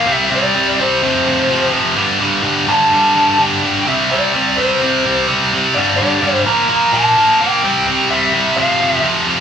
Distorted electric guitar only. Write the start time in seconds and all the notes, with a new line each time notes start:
0.06 C3 G3 C4
0.29 C3 G3 C4
0.54 C3 G3 C4
0.79 C3 G3 C4
1.02 F2 C3 F3
1.27 F2 C3 F3
1.50 F2 C3 F3
1.73 F2 C3 F3
1.95 G2 D3 G3
2.19 G2 D3 G3
2.42 G2 D3 G3
2.67 G2 D3 G3
2.92 G2 D3 G3
3.16 G2 D3 G3
3.39 G2 D3 G3
3.63 G2 D3 G3
3.86 C3 G3 C4
4.10 C3 G3 C4
4.34 C3 G3 C4
4.57 C3 G3 C4
4.81 C3 G3 C4
5.05 C3 G3 C4
5.27 C3 G3 C4
5.53 C3 G3 C4
5.75 G2 D3 G3
6.01 G2 D3 G3
6.21 G2 D3 G3
6.45 A#2 F3 A#3
6.69 A#2 F3 A#3
6.93 A#2 F3 A#3
7.16 A#2 F3 A#3
7.41 A#2 F3 A#3
7.63 C3 G3 C4
7.87 C3 G3 C4
8.10 C3 G3 C4
8.34 C3 G3 C4
8.56 F2 C3 F3
8.80 F2 C3 F3
9.02 F2 C3 F3
9.27 F2 C3 F3